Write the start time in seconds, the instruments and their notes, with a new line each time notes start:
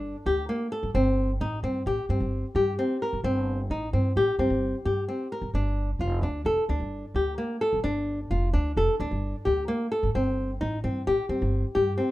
Already playing: upright bass G1, nylon-string guitar D4
0.26 upright bass D2, nylon-string guitar G4
0.49 nylon-string guitar A#3
0.72 nylon-string guitar A4
0.83 upright bass G1
0.94 upright bass G1, nylon-string guitar C4
1.40 upright bass A1, nylon-string guitar D#4
1.63 upright bass G2, nylon-string guitar C4
1.86 upright bass A1, nylon-string guitar G4
2.09 upright bass G2, nylon-string guitar C4
2.20 upright bass G1
2.55 upright bass G2, nylon-string guitar G4
2.79 nylon-string guitar C4
3.02 nylon-string guitar A#4
3.13 upright bass G1
3.24 upright bass G1, nylon-string guitar C4
3.70 upright bass A1, nylon-string guitar D#4
3.93 upright bass G2, nylon-string guitar C4
4.16 upright bass A1, nylon-string guitar G4
4.39 upright bass G2, nylon-string guitar C4
4.50 upright bass G1
4.85 upright bass G2, nylon-string guitar G4
5.09 nylon-string guitar C4
5.32 nylon-string guitar A#4
5.42 upright bass G1
5.54 upright bass G1, nylon-string guitar D4
5.99 upright bass F1, nylon-string guitar F4
6.22 upright bass D2, nylon-string guitar D4
6.45 upright bass F1, nylon-string guitar A4
6.69 upright bass D2, nylon-string guitar D4
6.80 upright bass G1
7.14 upright bass D2, nylon-string guitar G4
7.38 nylon-string guitar A#3
7.61 nylon-string guitar A4
7.73 upright bass G1
7.84 upright bass G1, nylon-string guitar D4
8.30 upright bass F1, nylon-string guitar F4
8.53 upright bass D2, nylon-string guitar D4
8.77 upright bass F1, nylon-string guitar A4
9.00 upright bass D2, nylon-string guitar D4
9.11 upright bass G1
9.45 upright bass D2, nylon-string guitar G4
9.68 nylon-string guitar A#3
9.92 nylon-string guitar A4
10.03 upright bass G1
10.15 upright bass G1, nylon-string guitar C4
10.61 upright bass A1, nylon-string guitar D#4
10.84 upright bass G2, nylon-string guitar C4
11.07 upright bass A1, nylon-string guitar G4
11.29 upright bass G2, nylon-string guitar C4
11.42 upright bass G1
11.75 upright bass G2, nylon-string guitar G4
11.98 nylon-string guitar C4